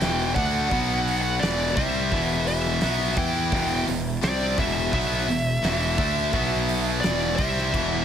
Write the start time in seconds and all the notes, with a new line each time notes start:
Already playing: G5
0.01 E1 E2 B2 E3, snare, open hi-hat
0.35 D2 D3 A3 D4 F#5, kick, open hi-hat
0.71 B1 B2 F#3 B3, kick, open hi-hat
1.07 open hi-hat
1.21 F#5
1.40 E1 E2 B2 E3 D5, snare, open hi-hat
1.76 C2 C3 G3 C4 E5, kick, open hi-hat
2.12 E1 E2 B2 E3, kick, open hi-hat
2.47 E5, open hi-hat
2.65 snare
2.81 B1 B2 F#3 B3, snare, open hi-hat
3.17 E2 E3 B3 E4 G5, kick, open hi-hat
3.52 E1 E2 B2 E3, kick, open hi-hat
3.88 E1 E2 B2, open hi-hat
4.22 C2 C3 G3 C4 D5, snare, open hi-hat
4.57 E1 E2 B2 E3 E5, kick, open hi-hat
4.92 B1 B2 F#3 B3 E5, kick, open hi-hat
5.28 E1 E2 B2, open hi-hat
5.63 E1 E2 B2 E3, snare, open hi-hat
5.98 D2 D3 A3 D4, kick, open hi-hat
6.33 B1 B2 F#3 B3, kick, open hi-hat
6.69 open hi-hat
7.00 E2 D5, snare, open hi-hat
7.04 E1 B2 E3
7.36 C2 C3 G3 C4 E5, kick, open hi-hat
7.58 snare
7.73 E1 E2 B2 E3, kick, crash